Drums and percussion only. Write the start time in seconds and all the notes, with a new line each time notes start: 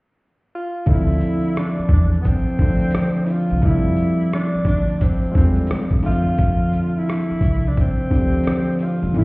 0.86 kick, closed hi-hat, shaker
1.10 shaker
1.21 closed hi-hat, shaker
1.44 shaker
1.56 cross-stick, closed hi-hat, shaker
1.77 shaker
1.89 kick, closed hi-hat, shaker
2.13 closed hi-hat, shaker
2.25 kick, closed hi-hat, shaker
2.46 shaker
2.59 kick, closed hi-hat
2.80 closed hi-hat, shaker
2.91 cross-stick, closed hi-hat, shaker
3.16 shaker
3.26 open hi-hat, shaker
3.50 closed hi-hat, shaker
3.62 kick, closed hi-hat, shaker
3.86 shaker
3.97 closed hi-hat, shaker
4.20 shaker
4.32 cross-stick, closed hi-hat, shaker
4.53 shaker
4.65 kick, closed hi-hat, shaker
4.89 closed hi-hat, shaker
5.01 kick, closed hi-hat, shaker
5.22 shaker
5.35 kick, closed hi-hat
5.56 closed hi-hat, shaker
5.67 cross-stick, closed hi-hat, shaker
5.91 kick, shaker
6.03 open hi-hat, shaker
6.26 closed hi-hat, shaker
6.38 kick, closed hi-hat, shaker
6.62 shaker
6.73 closed hi-hat, shaker
6.95 shaker
7.08 cross-stick, closed hi-hat, shaker
7.29 shaker
7.41 kick, closed hi-hat, shaker
7.64 closed hi-hat, shaker
7.76 kick, closed hi-hat, shaker
7.97 shaker
8.11 kick, closed hi-hat
8.32 closed hi-hat, shaker
8.44 cross-stick, closed hi-hat, shaker
8.67 shaker
8.79 open hi-hat, shaker
9.02 closed hi-hat, shaker
9.14 closed hi-hat, shaker